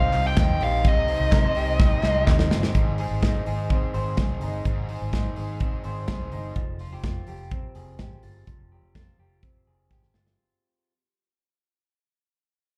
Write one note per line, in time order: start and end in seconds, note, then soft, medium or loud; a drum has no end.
0.00 0.84 C3 loud
0.00 0.13 C4 medium
0.00 0.13 D#4 medium
0.00 0.37 D#4 medium
0.00 0.12 G4 medium
0.00 0.14 G4 medium
0.00 0.11 C5 medium
0.00 1.32 C5 medium
0.00 0.27 F5 loud
0.13 0.34 C2 loud
0.13 0.37 C4 soft
0.13 0.37 D#4 medium
0.13 0.26 F4 medium
0.13 0.37 G4 medium
0.13 0.37 C5 medium
0.13 clap medium
0.13 open hi-hat medium
0.26 0.60 G4 medium
0.26 0.63 G5 loud
0.37 0.57 D#2 medium
0.37 0.61 C3 medium
0.37 0.61 G3 medium
0.37 0.61 C4 medium
0.37 1.08 D#4 medium
0.37 0.60 D#4 loud
0.37 0.60 G4 medium
0.37 0.59 C5 medium
0.37 kick loud
0.37 snare loud
0.37 clap loud
0.37 hi-hat pedal medium
0.37 ride medium
0.60 0.85 A#1 loud
0.60 0.84 C4 soft
0.60 0.85 D#4 soft
0.60 0.85 G4 medium
0.60 1.55 G4 medium
0.60 0.84 C5 medium
0.60 0.87 F5 medium
0.60 open hi-hat medium
0.84 1.15 C2 loud
0.84 1.09 C3 medium
0.84 2.75 C3 medium
0.84 1.09 G3 medium
0.84 1.09 C4 medium
0.84 1.08 D#4 medium
0.84 1.08 G4 medium
0.84 1.07 C5 medium
0.84 2.25 D#5 medium
0.84 kick loud
0.84 hi-hat pedal medium
0.84 ride medium
1.08 1.31 C4 medium
1.08 1.79 D#4 medium
1.08 1.31 D#4 soft
1.08 1.32 G4 medium
1.08 1.32 C5 medium
1.08 open hi-hat medium
1.20 1.30 C2 loud
1.31 1.56 C3 medium
1.31 1.52 C3 loud
1.31 1.56 G3 medium
1.31 1.56 C4 medium
1.31 1.55 D#4 medium
1.31 1.54 G4 medium
1.31 1.44 A#4 medium
1.31 1.54 C5 loud
1.31 kick loud
1.31 snare loud
1.31 clap loud
1.31 hi-hat pedal medium
1.31 ride medium
1.44 2.80 C5 medium
1.55 1.86 C2 medium
1.55 1.78 C4 medium
1.55 1.78 D#4 medium
1.55 1.79 G4 medium
1.55 2.03 G4 medium
1.55 1.79 C5 medium
1.55 open hi-hat medium
1.79 2.03 C4 medium
1.79 2.27 D#4 medium
1.79 2.03 D#4 medium
1.79 2.02 G4 medium
1.79 2.01 C5 medium
1.79 kick loud
1.79 snare medium
2.03 2.24 C2 loud
2.03 2.26 C4 medium
2.03 2.26 D#4 medium
2.03 2.16 F4 medium
2.03 2.26 G4 medium
2.03 2.26 C5 medium
2.03 snare medium
2.03 clap medium
2.16 2.51 G4 medium
2.26 2.53 D#2 medium
2.26 2.51 C3 medium
2.26 2.51 G3 loud
2.26 2.51 C4 loud
2.26 2.50 D#4 medium
2.26 3.23 D#4 medium
2.26 2.50 G4 loud
2.26 2.49 C5 loud
2.26 kick loud
2.26 snare loud
2.26 clap loud
2.39 snare medium
2.50 2.71 G1 medium
2.50 2.74 C4 medium
2.50 2.73 D#4 medium
2.50 2.63 F4 medium
2.50 2.74 G4 soft
2.50 2.74 C5 medium
2.50 snare loud
2.63 2.80 G4 medium
2.63 snare loud
2.74 3.05 G#1 loud
2.74 2.98 G#2 medium
2.74 4.64 G#2 medium
2.74 2.98 D#3 medium
2.74 2.98 G#3 medium
2.74 2.98 D#4 medium
2.74 2.97 G#4 medium
2.74 2.97 C5 loud
2.74 kick loud
2.74 closed hi-hat medium
2.98 3.21 G#3 medium
2.98 3.22 D#4 medium
2.98 3.22 G#4 medium
2.98 3.47 G#4 medium
2.98 3.22 C5 medium
2.98 open hi-hat medium
3.11 3.21 G#1 medium
3.22 3.46 G#2 medium
3.22 3.43 G#2 medium
3.22 3.46 D#3 medium
3.22 3.46 G#3 medium
3.22 3.45 D#4 medium
3.22 4.41 D#4 medium
3.22 3.45 G#4 medium
3.22 3.44 C5 loud
3.22 kick medium
3.22 snare loud
3.22 closed hi-hat medium
3.45 3.77 G#1 medium
3.45 3.68 G#3 medium
3.45 3.69 D#4 medium
3.45 3.70 G#4 medium
3.45 4.18 G#4 medium
3.45 3.70 C5 medium
3.45 open hi-hat medium
3.69 3.93 G#3 medium
3.69 5.61 C4 medium
3.69 3.94 D#4 medium
3.69 3.93 G#4 medium
3.69 3.92 C5 medium
3.69 kick loud
3.69 closed hi-hat medium
3.93 4.14 G#1 medium
3.93 4.17 G#3 soft
3.93 4.17 D#4 soft
3.93 4.17 G#4 medium
3.93 4.17 C5 medium
3.93 5.84 C5 medium
3.93 open hi-hat medium
4.17 4.38 C2 medium
4.17 4.41 G#2 medium
4.17 4.42 D#3 medium
4.17 4.42 G#3 medium
4.17 4.41 D#4 medium
4.17 4.41 G#4 medium
4.17 4.89 G#4 medium
4.17 4.40 C5 medium
4.17 kick loud
4.17 snare loud
4.17 closed hi-hat medium
4.41 4.62 G1 medium
4.41 4.65 G#3 soft
4.41 5.12 D#4 medium
4.41 4.65 D#4 soft
4.41 4.66 G#4 soft
4.41 4.65 C5 soft
4.41 open hi-hat medium
4.65 4.96 G#1 medium
4.65 4.89 G#2 medium
4.65 6.56 G#2 medium
4.65 4.89 D#3 medium
4.65 4.90 G#3 medium
4.65 4.89 D#4 medium
4.65 4.89 G#4 medium
4.65 4.88 C5 medium
4.65 kick medium
4.65 closed hi-hat medium
4.89 5.12 G#3 soft
4.89 5.12 D#4 soft
4.89 5.37 G#4 medium
4.89 5.12 G#4 medium
4.89 5.12 C5 medium
4.89 open hi-hat medium
5.02 5.12 G#1 medium
5.12 5.36 G#2 medium
5.12 5.33 G#2 loud
5.12 5.37 D#3 medium
5.12 5.37 G#3 medium
5.12 5.36 D#4 medium
5.12 6.31 D#4 medium
5.12 5.36 G#4 medium
5.12 5.35 C5 medium
5.12 kick medium
5.12 snare loud
5.12 closed hi-hat medium
5.36 5.68 G#1 medium
5.36 5.59 G#3 soft
5.36 5.60 D#4 soft
5.36 6.08 G#4 medium
5.36 5.60 G#4 medium
5.36 5.61 C5 medium
5.36 open hi-hat medium
5.60 5.84 G#3 medium
5.60 7.51 C4 medium
5.60 5.84 D#4 medium
5.60 5.83 G#4 medium
5.60 5.82 C5 medium
5.60 kick loud
5.60 closed hi-hat medium
5.83 6.05 G#1 medium
5.83 6.07 G#3 soft
5.83 6.07 D#4 soft
5.83 6.07 G#4 soft
5.83 6.08 C5 medium
5.83 7.75 C5 medium
5.83 open hi-hat medium
6.08 6.29 C2 medium
6.08 6.32 G#2 medium
6.08 6.32 D#3 medium
6.08 6.32 G#3 medium
6.08 6.32 D#4 medium
6.08 6.80 G#4 medium
6.08 6.31 G#4 medium
6.08 6.30 C5 loud
6.08 kick medium
6.08 snare loud
6.08 closed hi-hat medium
6.32 6.53 G1 medium
6.32 6.57 G#3 soft
6.32 6.61 D#4 medium
6.32 6.56 D#4 soft
6.32 6.56 G#4 soft
6.32 6.56 C5 medium
6.32 open hi-hat medium
6.56 6.87 F1 loud
6.56 8.47 F3 medium
6.56 kick medium
6.56 closed hi-hat medium
6.79 6.93 F4 medium
6.79 open hi-hat medium
6.92 7.05 F1 medium
6.92 7.27 G4 soft
7.03 7.24 F2 medium
7.03 8.23 F4 medium
7.03 kick loud
7.03 snare loud
7.03 closed hi-hat medium
7.27 7.58 F1 medium
7.27 7.99 G4 medium
7.27 open hi-hat medium
7.51 9.43 C4 medium
7.51 kick loud
7.51 closed hi-hat medium
7.75 7.96 F1 loud
7.75 9.67 G#4 soft
7.75 open hi-hat medium
7.99 8.20 G#1 medium
7.99 8.71 G4 soft
7.99 kick medium
7.99 snare loud
7.99 closed hi-hat medium
8.23 8.44 G1 medium
8.23 8.95 F4 medium
8.23 open hi-hat medium
8.47 8.78 F1 loud
8.47 10.93 F3 medium
8.47 kick medium
8.47 closed hi-hat medium
8.72 9.19 G4 soft
8.95 9.15 F2 medium
8.95 10.15 F4 medium
8.95 kick loud
8.95 snare medium
8.95 closed hi-hat medium
9.19 9.49 F1 medium
9.19 9.90 G4 medium
9.43 10.93 C4 medium
9.43 kick loud
9.43 closed hi-hat medium
9.67 9.87 F1 medium
9.67 10.93 G#4 medium
9.91 10.11 G#1 medium
9.91 10.93 G4 medium
9.91 kick medium
9.91 snare soft
10.02 snare soft
10.14 10.35 G1 medium
10.14 10.93 F4 medium
10.14 snare medium
10.27 snare medium